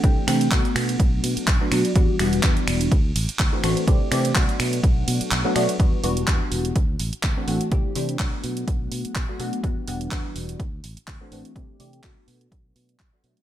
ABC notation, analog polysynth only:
X:1
M:4/4
L:1/16
Q:"Swing 16ths" 1/4=125
K:Em
V:1 name="Analog polysynth"
[E,A,CDG]2 [E,A,CDG]2 [F,A,B,DF]8- [F,A,B,DF] [F,A,B,DF] [F,A,B,DF]2 | [E,G,B,DF]2 [E,G,B,DF]2 [E,G,B,DF]4 z4 z [E,A,CDF] [E,A,CDF]2 | [E,A,CDG]2 [E,A,CDG]2 [F,A,B,DF]8- [F,A,B,DF] [F,A,B,DF] [F,A,B,DF]2 | [E,G,B,DF]2 [E,G,B,DF]2 [E,G,B,DF]4 z4 z [E,A,CDF] [E,A,CDF]2 |
[E,A,CDG]2 [E,A,CDG]2 [F,A,B,DF]8- [F,A,B,DF] [F,A,B,DF] [F,A,B,DF]2 | [E,G,B,DF]2 [E,G,B,DF]2 [E,G,B,DF]4 z4 z [E,A,CDF] [E,A,CDF]2 | [E,A,CDG]2 [E,A,CDG]2 [F,DF]8- [F,DF] [F,A,B,DF] [F,A,B,DF]2 |]